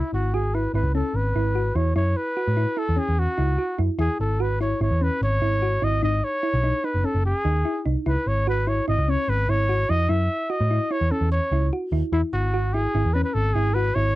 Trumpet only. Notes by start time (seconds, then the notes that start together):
Already playing: E4
0.14 F#4
0.34 G#4
0.54 B4
0.75 B4
0.95 A4
1.16 B4
1.76 C#5
1.97 C#5
2.17 B4
2.78 A4
2.99 G#4
3.19 F#4
4.00 G#4
4.21 A4
4.41 B4
4.61 C#5
4.83 C#5
5.03 B4
5.23 C#5
5.84 D#5
6.04 D#5
6.24 C#5
6.85 B4
7.05 A4
7.26 G#4
8.07 B4
8.28 C#5
8.49 B4
8.68 C#5
8.88 D#5
9.10 C#5
9.29 B4
9.50 C#5
9.90 D#5
10.10 E5
10.50 D#5
10.92 C#5
11.11 A4
11.32 C#5
12.13 E4
12.33 F#4
12.74 G#4
13.14 B4
13.24 B4
13.34 A4
13.54 G#4
13.74 B4
13.95 C#5